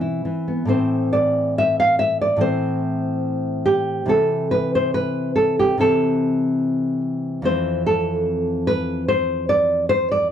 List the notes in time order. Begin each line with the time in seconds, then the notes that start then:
Already playing: B2 E3 B3 C4
0.01 E4
0.25 E3
0.48 B3
0.65 A2 E3 C4 C5
1.13 D5
1.58 E5
1.80 F5
1.99 E5
2.21 D5
2.37 A2 E3 C4
2.41 C5
3.66 G4
4.06 C3 E3 C4 A4
4.51 B4
4.75 C5
4.94 B4
5.36 A4
5.59 G4
5.78 C3 E3 C4 A4
7.42 F2 E3 C4 C5
7.86 A4
8.67 B4
9.08 C5
9.49 D5
9.89 C5
10.12 D5